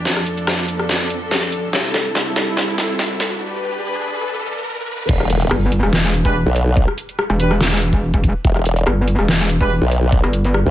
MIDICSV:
0, 0, Header, 1, 8, 480
1, 0, Start_track
1, 0, Tempo, 419580
1, 63, Time_signature, 4, 2, 24, 8
1, 12249, End_track
2, 0, Start_track
2, 0, Title_t, "Brass ensemble"
2, 0, Program_c, 0, 61
2, 7150, Note_on_c, 0, 62, 88
2, 7150, Note_on_c, 0, 67, 86
2, 7150, Note_on_c, 0, 71, 99
2, 7279, Note_off_c, 0, 62, 0
2, 7279, Note_off_c, 0, 67, 0
2, 7279, Note_off_c, 0, 71, 0
2, 8462, Note_on_c, 0, 62, 80
2, 8462, Note_on_c, 0, 67, 73
2, 8463, Note_on_c, 0, 71, 87
2, 8605, Note_off_c, 0, 62, 0
2, 8605, Note_off_c, 0, 67, 0
2, 8605, Note_off_c, 0, 71, 0
2, 10990, Note_on_c, 0, 62, 93
2, 10990, Note_on_c, 0, 67, 85
2, 10990, Note_on_c, 0, 71, 107
2, 11119, Note_off_c, 0, 62, 0
2, 11119, Note_off_c, 0, 67, 0
2, 11119, Note_off_c, 0, 71, 0
2, 12249, End_track
3, 0, Start_track
3, 0, Title_t, "String section"
3, 0, Program_c, 1, 48
3, 0, Note_on_c, 1, 62, 66
3, 61, Note_on_c, 1, 41, 76
3, 61, Note_on_c, 1, 53, 71
3, 62, Note_on_c, 1, 69, 86
3, 1943, Note_off_c, 1, 62, 0
3, 1962, Note_off_c, 1, 41, 0
3, 1963, Note_off_c, 1, 53, 0
3, 1982, Note_on_c, 1, 64, 74
3, 1983, Note_on_c, 1, 48, 77
3, 1983, Note_on_c, 1, 55, 72
3, 3864, Note_off_c, 1, 69, 0
3, 3883, Note_off_c, 1, 64, 0
3, 3884, Note_off_c, 1, 48, 0
3, 3901, Note_on_c, 1, 62, 72
3, 3902, Note_on_c, 1, 43, 80
3, 3902, Note_on_c, 1, 71, 88
3, 5784, Note_off_c, 1, 55, 0
3, 5802, Note_off_c, 1, 62, 0
3, 5803, Note_off_c, 1, 43, 0
3, 5803, Note_off_c, 1, 71, 0
3, 12249, End_track
4, 0, Start_track
4, 0, Title_t, "Wobble bass"
4, 0, Program_c, 2, 39
4, 5822, Note_on_c, 2, 28, 92
4, 6284, Note_off_c, 2, 28, 0
4, 7389, Note_on_c, 2, 35, 105
4, 7849, Note_off_c, 2, 35, 0
4, 9662, Note_on_c, 2, 28, 97
4, 10124, Note_off_c, 2, 28, 0
4, 11229, Note_on_c, 2, 35, 102
4, 11689, Note_off_c, 2, 35, 0
4, 12189, Note_on_c, 2, 38, 102
4, 12249, Note_off_c, 2, 38, 0
4, 12249, End_track
5, 0, Start_track
5, 0, Title_t, "Wobble bass"
5, 0, Program_c, 3, 39
5, 6302, Note_on_c, 3, 31, 99
5, 6650, Note_off_c, 3, 31, 0
5, 6670, Note_on_c, 3, 28, 99
5, 7130, Note_off_c, 3, 28, 0
5, 7150, Note_on_c, 3, 28, 100
5, 7370, Note_off_c, 3, 28, 0
5, 8350, Note_on_c, 3, 28, 99
5, 9290, Note_off_c, 3, 28, 0
5, 9310, Note_on_c, 3, 28, 104
5, 9529, Note_off_c, 3, 28, 0
5, 10142, Note_on_c, 3, 31, 101
5, 10489, Note_off_c, 3, 31, 0
5, 10510, Note_on_c, 3, 28, 103
5, 10969, Note_off_c, 3, 28, 0
5, 10990, Note_on_c, 3, 28, 97
5, 11209, Note_off_c, 3, 28, 0
5, 11709, Note_on_c, 3, 31, 101
5, 12169, Note_off_c, 3, 31, 0
5, 12249, End_track
6, 0, Start_track
6, 0, Title_t, "Impact"
6, 0, Program_c, 4, 103
6, 5822, Note_on_c, 4, 60, 74
6, 7742, Note_off_c, 4, 60, 0
6, 12249, End_track
7, 0, Start_track
7, 0, Title_t, "Riser"
7, 0, Program_c, 5, 103
7, 0, Note_on_c, 5, 60, 73
7, 5822, Note_off_c, 5, 60, 0
7, 12249, End_track
8, 0, Start_track
8, 0, Title_t, "Drums"
8, 61, Note_on_c, 9, 38, 59
8, 175, Note_off_c, 9, 38, 0
8, 189, Note_on_c, 9, 37, 53
8, 302, Note_on_c, 9, 42, 82
8, 303, Note_off_c, 9, 37, 0
8, 416, Note_off_c, 9, 42, 0
8, 429, Note_on_c, 9, 42, 36
8, 541, Note_on_c, 9, 37, 79
8, 541, Note_on_c, 9, 38, 59
8, 543, Note_off_c, 9, 42, 0
8, 656, Note_off_c, 9, 37, 0
8, 656, Note_off_c, 9, 38, 0
8, 781, Note_on_c, 9, 42, 82
8, 895, Note_off_c, 9, 42, 0
8, 909, Note_on_c, 9, 37, 55
8, 1021, Note_on_c, 9, 38, 66
8, 1023, Note_off_c, 9, 37, 0
8, 1136, Note_off_c, 9, 38, 0
8, 1261, Note_on_c, 9, 42, 81
8, 1375, Note_off_c, 9, 42, 0
8, 1502, Note_on_c, 9, 38, 68
8, 1616, Note_off_c, 9, 38, 0
8, 1741, Note_on_c, 9, 42, 81
8, 1855, Note_off_c, 9, 42, 0
8, 1982, Note_on_c, 9, 38, 70
8, 2096, Note_off_c, 9, 38, 0
8, 2222, Note_on_c, 9, 38, 78
8, 2222, Note_on_c, 9, 42, 83
8, 2336, Note_off_c, 9, 38, 0
8, 2336, Note_off_c, 9, 42, 0
8, 2349, Note_on_c, 9, 42, 36
8, 2462, Note_on_c, 9, 38, 78
8, 2464, Note_off_c, 9, 42, 0
8, 2576, Note_off_c, 9, 38, 0
8, 2702, Note_on_c, 9, 38, 81
8, 2702, Note_on_c, 9, 42, 83
8, 2816, Note_off_c, 9, 38, 0
8, 2816, Note_off_c, 9, 42, 0
8, 2941, Note_on_c, 9, 38, 82
8, 3056, Note_off_c, 9, 38, 0
8, 3182, Note_on_c, 9, 38, 79
8, 3182, Note_on_c, 9, 42, 79
8, 3296, Note_off_c, 9, 38, 0
8, 3296, Note_off_c, 9, 42, 0
8, 3421, Note_on_c, 9, 38, 85
8, 3536, Note_off_c, 9, 38, 0
8, 3662, Note_on_c, 9, 38, 89
8, 3662, Note_on_c, 9, 42, 86
8, 3776, Note_off_c, 9, 38, 0
8, 3776, Note_off_c, 9, 42, 0
8, 5822, Note_on_c, 9, 49, 99
8, 5823, Note_on_c, 9, 36, 122
8, 5937, Note_off_c, 9, 36, 0
8, 5937, Note_off_c, 9, 49, 0
8, 5950, Note_on_c, 9, 37, 58
8, 6062, Note_on_c, 9, 42, 86
8, 6064, Note_off_c, 9, 37, 0
8, 6176, Note_off_c, 9, 42, 0
8, 6190, Note_on_c, 9, 42, 40
8, 6302, Note_on_c, 9, 37, 86
8, 6304, Note_off_c, 9, 42, 0
8, 6417, Note_off_c, 9, 37, 0
8, 6542, Note_on_c, 9, 42, 85
8, 6656, Note_off_c, 9, 42, 0
8, 6669, Note_on_c, 9, 37, 58
8, 6781, Note_on_c, 9, 38, 125
8, 6784, Note_off_c, 9, 37, 0
8, 6896, Note_off_c, 9, 38, 0
8, 7021, Note_on_c, 9, 42, 81
8, 7136, Note_off_c, 9, 42, 0
8, 7150, Note_on_c, 9, 36, 61
8, 7265, Note_off_c, 9, 36, 0
8, 7502, Note_on_c, 9, 42, 85
8, 7616, Note_off_c, 9, 42, 0
8, 7742, Note_on_c, 9, 36, 123
8, 7857, Note_off_c, 9, 36, 0
8, 7869, Note_on_c, 9, 37, 58
8, 7982, Note_on_c, 9, 42, 85
8, 7984, Note_off_c, 9, 37, 0
8, 8096, Note_off_c, 9, 42, 0
8, 8110, Note_on_c, 9, 42, 38
8, 8222, Note_on_c, 9, 37, 79
8, 8225, Note_off_c, 9, 42, 0
8, 8336, Note_off_c, 9, 37, 0
8, 8462, Note_on_c, 9, 42, 90
8, 8576, Note_off_c, 9, 42, 0
8, 8590, Note_on_c, 9, 37, 55
8, 8702, Note_on_c, 9, 38, 127
8, 8704, Note_off_c, 9, 37, 0
8, 8816, Note_off_c, 9, 38, 0
8, 8942, Note_on_c, 9, 42, 81
8, 9056, Note_off_c, 9, 42, 0
8, 9070, Note_on_c, 9, 36, 62
8, 9184, Note_off_c, 9, 36, 0
8, 9310, Note_on_c, 9, 36, 64
8, 9422, Note_off_c, 9, 36, 0
8, 9422, Note_on_c, 9, 36, 106
8, 9422, Note_on_c, 9, 42, 83
8, 9536, Note_off_c, 9, 42, 0
8, 9537, Note_off_c, 9, 36, 0
8, 9662, Note_on_c, 9, 36, 127
8, 9777, Note_off_c, 9, 36, 0
8, 9789, Note_on_c, 9, 37, 53
8, 9902, Note_on_c, 9, 42, 83
8, 9904, Note_off_c, 9, 37, 0
8, 10016, Note_off_c, 9, 42, 0
8, 10029, Note_on_c, 9, 42, 36
8, 10142, Note_on_c, 9, 37, 81
8, 10144, Note_off_c, 9, 42, 0
8, 10256, Note_off_c, 9, 37, 0
8, 10382, Note_on_c, 9, 42, 83
8, 10496, Note_off_c, 9, 42, 0
8, 10509, Note_on_c, 9, 37, 54
8, 10622, Note_on_c, 9, 38, 122
8, 10624, Note_off_c, 9, 37, 0
8, 10736, Note_off_c, 9, 38, 0
8, 10862, Note_on_c, 9, 42, 78
8, 10976, Note_off_c, 9, 42, 0
8, 10990, Note_on_c, 9, 36, 66
8, 11104, Note_off_c, 9, 36, 0
8, 11342, Note_on_c, 9, 42, 87
8, 11456, Note_off_c, 9, 42, 0
8, 11582, Note_on_c, 9, 36, 123
8, 11696, Note_off_c, 9, 36, 0
8, 11710, Note_on_c, 9, 37, 54
8, 11822, Note_on_c, 9, 42, 83
8, 11824, Note_off_c, 9, 37, 0
8, 11936, Note_off_c, 9, 42, 0
8, 11950, Note_on_c, 9, 42, 34
8, 12062, Note_on_c, 9, 37, 75
8, 12064, Note_off_c, 9, 42, 0
8, 12176, Note_off_c, 9, 37, 0
8, 12249, End_track
0, 0, End_of_file